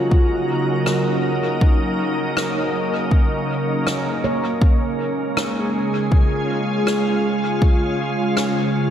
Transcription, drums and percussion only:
0.11 kick medium
0.86 cross-stick medium
1.61 kick loud
2.37 cross-stick medium
3.11 kick loud
3.87 cross-stick medium
4.62 kick loud
5.37 cross-stick medium
6.12 kick loud
6.87 cross-stick medium
7.62 kick loud
8.37 cross-stick medium

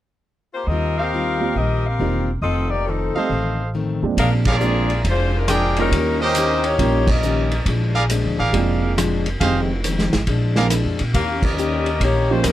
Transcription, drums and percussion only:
4.17 kick soft
4.17 ride medium
4.45 kick medium
4.45 crash medium
4.61 hi-hat pedal medium
4.90 ride soft
5.05 kick soft
5.05 ride medium
5.48 cross-stick medium
5.48 hi-hat pedal medium
5.48 ride medium
5.77 ride soft
5.92 kick soft
5.92 ride medium
6.35 hi-hat pedal medium
6.35 ride medium
6.64 ride soft
6.79 kick soft
6.79 ride medium
7.07 kick medium
7.07 crash medium
7.23 hi-hat pedal soft
7.51 ride soft
7.66 kick soft
7.66 ride medium
8.10 hi-hat pedal soft
8.10 ride medium
8.53 kick soft
8.53 ride medium
8.98 cross-stick medium
8.98 hi-hat pedal medium
8.98 ride medium
9.26 ride soft
9.40 kick soft
9.40 ride medium
9.84 hi-hat pedal medium
9.84 ride medium
9.99 snare soft
10.13 snare soft
10.13 ride soft
10.27 kick soft
10.27 ride medium
10.56 snare soft
10.70 cross-stick medium
10.70 hi-hat pedal medium
10.70 ride medium
10.99 ride soft
11.14 kick soft
11.14 ride medium
11.42 kick medium
11.42 crash medium
11.58 hi-hat pedal medium
11.86 ride soft
12.01 kick soft
12.01 ride medium
12.44 cross-stick medium
12.44 hi-hat pedal medium
12.44 ride medium

